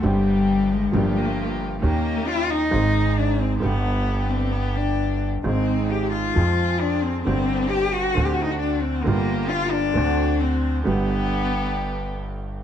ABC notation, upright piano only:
X:1
M:4/4
L:1/8
Q:1/4=133
K:Gphr
V:1 name="Upright piano" clef=bass
[G,,,G,,D,G,CG]4 [G,,,G,,F,B,DG]4 | [E,,E,B,_DG]4 [A,,,A,,E,A,CA]4 | [G,,,G,,D,G,=B,G]8 | [A,,,A,,E,A,CA]4 [F,,F,A,CA]4 |
[G,,,G,,D,G,CG]4 [D,,D,=A,C^F]4 | [G,,,G,,D,G,B,F]4 [D,,D,=A,C^F]4 | [G,,,G,,D,G,=B,G]8 |]